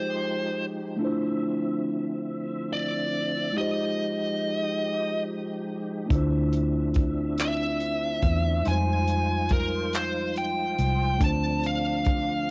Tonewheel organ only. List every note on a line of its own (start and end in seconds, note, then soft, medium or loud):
0.00 0.97 F3 medium
0.00 0.97 G#3 medium
0.00 0.97 D#4 medium
0.00 0.97 G4 medium
0.99 3.52 D3 medium
0.99 3.52 F3 medium
0.99 3.52 C4 medium
0.99 3.52 E5 medium
3.56 6.08 F3 medium
3.56 6.08 G#3 medium
3.56 6.08 D#4 medium
3.56 6.08 G4 medium
6.10 8.63 D3 medium
6.10 8.63 C4 medium
6.10 8.63 D4 medium
6.10 8.63 E5 medium
8.66 11.18 F3 medium
8.66 11.18 D#4 medium
8.66 11.19 F4 medium
8.66 11.18 C5 medium
11.20 12.51 D3 medium
11.20 12.51 F3 medium
11.20 12.51 C4 medium
11.20 12.51 D4 medium